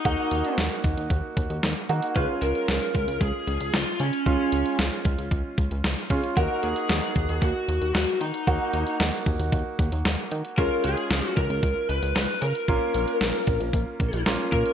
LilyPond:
<<
  \new Staff \with { instrumentName = "Lead electric guitar" } { \time 4/4 \key ees \minor \tempo 4 = 114 ees'4 r2. | ces''8 bes'4. aes'4 f'8 des'8~ | des'4 r2. | bes'8 aes'4. ges'4 ges'8 ees'8~ |
ees'4 r2. | bes'8 aes'4 bes'4 ces''8 ces''8 bes'8~ | bes'2. r8 bes'8 | }
  \new Staff \with { instrumentName = "Grand piano" } { \time 4/4 \key ees \minor <bes ees' ges'>2.~ <bes ees' ges'>8 <bes ees' ges'>8 | <aes des' f'>1 | <aes des' f'>2.~ <aes des' f'>8 <aes des' f'>8 | <bes ees' ges'>1 |
<bes ees' ges'>1 | <aes des' f'>1 | <bes des' f'>2. <bes des' f'>4 | }
  \new Staff \with { instrumentName = "Analog synth bass" } { \clef bass \time 4/4 \key ees \minor ees,16 r16 ees,16 r16 ees,16 r16 ees,16 ees,16 ees,16 r16 ees,16 ees,16 ees,16 r16 ees16 r16 | des,16 r16 des,16 r16 des,16 r16 des,16 des,16 des,16 r16 des,16 des,16 des,16 r16 des16 r16 | des,16 r16 des,16 r16 des,16 r16 des,16 des,16 des,16 r16 des,16 des,16 des,16 r16 des16 r16 | ees,16 r16 ees,16 r16 ees,16 r16 ees,16 ees,16 ees,16 r16 ees,16 ees,16 ees,16 r16 ees16 r16 |
ees,16 r16 ees,16 r16 ees,16 r16 ees,16 ees,16 ees,16 r16 ees,16 ees,16 ees,16 r16 ees16 r16 | des,16 r16 des,16 r16 des,16 r16 des,16 des,16 des,16 r16 des,16 des,16 des,16 r16 des16 r16 | bes,,16 r16 bes,,16 r16 bes,,16 r16 bes,,16 bes,,16 bes,,16 r16 bes,,16 bes,,16 bes,,16 r16 bes,16 r16 | }
  \new DrumStaff \with { instrumentName = "Drums" } \drummode { \time 4/4 <hh bd>8 hh16 hh16 <hh sn>8 <hh bd>16 hh16 <hh bd>8 <hh bd>16 hh16 <hh sn>8 hh16 hh16 | <hh bd>8 hh16 hh16 <hh sn>8 <hh bd>16 hh16 <hh bd>8 hh16 hh16 <hh sn>8 hh16 hh16 | <hh bd>8 hh16 hh16 <hh sn>8 <hh bd>16 hh16 <hh bd>8 <hh bd>16 hh16 <hh sn>8 <hh bd>16 hh16 | <hh bd>8 hh16 hh16 <hh sn>8 <hh bd>16 hh16 <hh bd>8 hh16 hh16 <hh sn>8 hh16 hh16 |
<hh bd>8 hh16 hh16 <hh sn>8 <hh bd>16 hh16 <hh bd>8 <hh bd>16 hh16 <hh sn>8 hh16 hh16 | <hh bd>8 hh16 hh16 <hh sn>8 <hh bd>16 hh16 <hh bd>8 hh16 hh16 <hh sn>8 hh16 hh16 | <hh bd>8 hh16 hh16 <hh sn>8 <hh bd>16 hh16 <hh bd>8 <hh bd>16 hh16 <hh sn>8 <hh bd>16 hh16 | }
>>